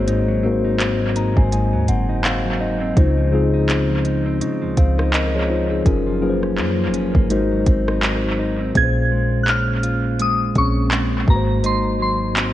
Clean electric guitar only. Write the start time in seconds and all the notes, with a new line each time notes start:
Already playing: G#3 C4
0.07 G#2 D#4
0.28 F#3
0.43 C4
0.64 D#4
0.80 C4
1.01 F#3
1.16 D#4
1.37 C4
1.52 G#2 D#4
1.73 F#3
1.88 C4
2.09 D#4
2.24 C4
2.45 F#3
2.60 D#4
2.81 C4
2.97 C#3 D#4
3.17 F3
3.32 C4
3.54 D#4
3.69 C4
3.89 F3
4.05 D#4
4.26 C4
4.41 C#3 D#4
4.62 F3
4.77 C4
4.98 D#4
5.13 C4
5.34 F3
5.50 D#4
5.71 C4
5.86 F#2 C#4
6.07 F3
6.22 A#3
6.43 C#4
6.58 A#3
6.79 F3
6.94 C#4
7.15 A#3
7.30 G#2 D#4
7.51 F#3
7.67 C4
7.88 D#4
8.03 C4
8.24 F#3
8.39 D#4
8.60 C4
8.75 A#2 F4
9.11 G#3
9.47 C#4
9.83 F4
10.20 G#3
10.56 C#4
10.92 G#3
11.28 G#2
11.64 G#2 D#4
12.00 F#3
12.36 C4